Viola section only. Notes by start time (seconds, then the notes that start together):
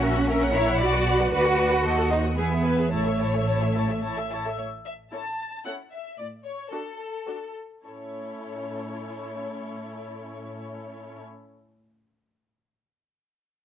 0.03 A#4 E5
0.16 C#5 F#5
0.29 A#4 E5
0.41 C#5 F#5
0.54 A#4 E5
0.68 C#5 F#5
0.81 F#4 D5
0.94 B4
1.07 F#4 D5
1.20 B4
1.33 F#4 D5
1.46 B4
1.58 F#4 D5
1.71 B4
1.84 F#4 C5
1.97 A4 D#5
2.10 F#4 C5
2.24 A4 D#5
2.37 E4 B4
2.51 G#4
2.64 E4 B4
2.78 G#4
2.92 E4 C#5
3.06 A4 E5
3.20 E4 C#5
3.34 A4 E5
3.48 E4 C#5
3.62 A4 E5
3.76 E4 C#5
3.89 A4 E5
4.04 E4 C#5
4.17 A4 E5
4.31 E4 C#5
4.45 A4 E5
5.12 C#4 E4
5.65 C#4 E4
6.71 D4 F#4
7.27 D4 F#4
7.84 C#4 E4